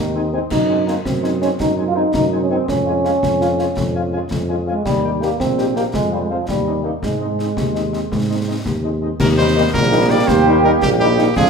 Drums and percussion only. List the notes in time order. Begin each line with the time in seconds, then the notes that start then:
0.51 concert bass drum, snare, crash
0.88 snare
1.05 concert bass drum, snare
1.24 snare
1.42 snare
1.60 concert bass drum, snare
2.14 concert bass drum, snare
2.68 concert bass drum, snare
3.05 snare
3.23 concert bass drum, snare
3.41 snare
3.59 snare
3.77 concert bass drum, snare
4.31 concert bass drum, snare
4.86 concert bass drum, snare, crash
5.22 snare
5.40 concert bass drum, snare
5.58 snare
5.76 snare
5.94 concert bass drum, snare
6.49 concert bass drum, snare
7.03 concert bass drum, snare
7.39 snare
7.57 concert bass drum, snare
7.75 snare
7.93 snare
8.12 concert bass drum, snare
8.66 concert bass drum, snare
9.20 concert bass drum, snare, crash
9.74 concert bass drum, snare
10.28 concert bass drum, snare
10.82 concert bass drum, snare
11.18 snare
11.36 concert bass drum, snare, crash